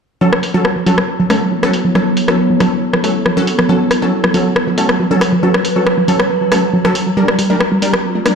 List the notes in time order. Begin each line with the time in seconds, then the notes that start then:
0.21 F#3 C#4 A4
0.33 cross-stick
0.43 open hi-hat
0.54 F#3 C#4 A4
0.63 E4, cross-stick
0.67 B3
0.76 F#3
0.86 F#3 C#4 A4, open hi-hat
0.98 cross-stick
1.07 A4 C#5
1.20 F#3
1.30 F#3 A3 C#4 A4, cross-stick, open hi-hat
1.52 F#3
1.63 F#3 C#4 A4, cross-stick
1.73 open hi-hat
1.85 F#3
1.95 F#3 C#4 A4, cross-stick
2.17 open hi-hat
2.28 F#3 C#4 A4, cross-stick
2.50 F#3
2.60 F#3 C#4 A4, cross-stick, open hi-hat
2.93 F#3, cross-stick
3.04 F#3 A3 C#4 A4, open hi-hat
3.26 F#3, cross-stick
3.37 F#3 C#4 A4
3.47 open hi-hat
3.59 F#3, cross-stick
3.69 F#3 C#4 A4
3.91 cross-stick, open hi-hat
4.02 F#3 C#4 A4
4.24 F#3, cross-stick
4.34 F#3 C#4 A4, open hi-hat
4.56 cross-stick
4.67 F#3
4.72 B4
4.78 F#3 A3 C#4 A4, open hi-hat
4.89 cross-stick
5.00 F#3
5.11 F#3 C#4 A4
5.21 cross-stick, open hi-hat
5.33 F#3
5.43 F#3 C#4 A4
5.54 cross-stick
5.65 open hi-hat
5.76 F#3 C#4 A4
5.86 cross-stick
5.98 F#3
6.08 F#3 C#4 A4, open hi-hat
6.20 cross-stick
6.41 F#3
6.52 F#3 A3 C#4 A4, cross-stick, open hi-hat
6.73 F#3
6.85 F#3 C#4 A4, cross-stick
6.95 open hi-hat
7.07 F#3
7.17 G3 D4 A#4
7.28 cross-stick
7.39 G3, open hi-hat
7.50 G3 A3 D4 A#4
7.54 C4 F4
7.60 cross-stick
7.72 G3
7.82 G3 D4 A#4, open hi-hat
7.93 D5, cross-stick
8.15 A3
8.26 G3 A#3 D4 A#4, cross-stick, open hi-hat